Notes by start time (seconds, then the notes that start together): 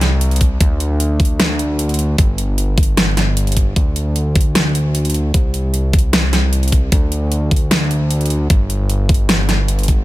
Already playing: C2
0.01 snare, closed hi-hat
0.21 closed hi-hat
0.31 closed hi-hat
0.36 closed hi-hat
0.41 kick, closed hi-hat
0.61 D2, kick, closed hi-hat
0.80 closed hi-hat
1.00 closed hi-hat
1.20 kick, closed hi-hat
1.25 closed hi-hat
1.40 snare, closed hi-hat
1.59 closed hi-hat
1.79 closed hi-hat
1.89 closed hi-hat
1.94 closed hi-hat
1.99 closed hi-hat
2.18 G1, kick, closed hi-hat
2.38 closed hi-hat
2.58 closed hi-hat
2.78 kick, closed hi-hat
2.83 closed hi-hat
2.97 snare, closed hi-hat
3.17 snare, closed hi-hat
3.37 closed hi-hat
3.47 closed hi-hat
3.52 closed hi-hat
3.57 kick, closed hi-hat
3.76 D2, kick, closed hi-hat
3.96 closed hi-hat
4.16 closed hi-hat
4.35 kick, closed hi-hat
4.41 closed hi-hat
4.55 snare, closed hi-hat
4.75 closed hi-hat
4.95 closed hi-hat
5.05 closed hi-hat
5.10 closed hi-hat
5.14 closed hi-hat
5.34 C2, kick, closed hi-hat
5.54 closed hi-hat
5.74 closed hi-hat
5.93 kick, closed hi-hat
5.99 closed hi-hat
6.13 snare, closed hi-hat
6.33 snare, closed hi-hat
6.53 closed hi-hat
6.63 closed hi-hat
6.68 closed hi-hat
6.72 kick, closed hi-hat
6.92 D2, kick, closed hi-hat
7.12 closed hi-hat
7.32 closed hi-hat
7.51 kick, closed hi-hat
7.56 closed hi-hat
7.71 snare, closed hi-hat
7.91 closed hi-hat
8.11 closed hi-hat
8.21 closed hi-hat
8.26 closed hi-hat
8.30 closed hi-hat
8.50 G1, kick, closed hi-hat
8.70 closed hi-hat
8.90 closed hi-hat
9.09 kick, closed hi-hat
9.14 closed hi-hat
9.29 snare, closed hi-hat
9.49 snare, closed hi-hat
9.68 closed hi-hat
9.79 closed hi-hat
9.83 closed hi-hat
9.88 kick, closed hi-hat